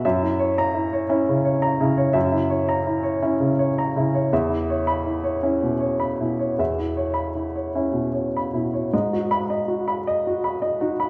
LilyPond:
<<
  \new Staff \with { instrumentName = "Upright piano" } { \time 6/8 \key gis \minor \tempo 4. = 54 << { r8. ais''8 r4. r16 | r2. | r8. b''8 r4. r16 | r2. |
r8 b''8 r2 | } \\ { e''16 e'16 cis''8 e'16 cis''16 e'16 cis16 cis''16 ais''16 e'16 cis''16 | e''16 e'16 cis''16 ais''16 e'16 cis''16 e'16 cis16 cis''16 ais''16 e'16 cis''16 | e''16 e'16 cis''8 e'16 cis''16 e'16 b,16 cis''16 b''16 e'16 cis''16 | e''16 e'16 cis''16 b''16 e'16 cis''16 e'16 b,16 cis''16 b''16 e'16 cis''16 |
dis''16 fis'8 dis''16 fis'16 b''16 dis''16 fis'16 b''16 dis''16 fis'16 b''16 | } >> }
  \new Staff \with { instrumentName = "Upright piano" } { \clef bass \time 6/8 \key gis \minor fis,4. cis'4 cis8 | fis,4. cis'4 cis8 | e,4. cis'4 b,8 | e,4. cis'4 b,8 |
gis,2~ gis,8 dis'8 | }
>>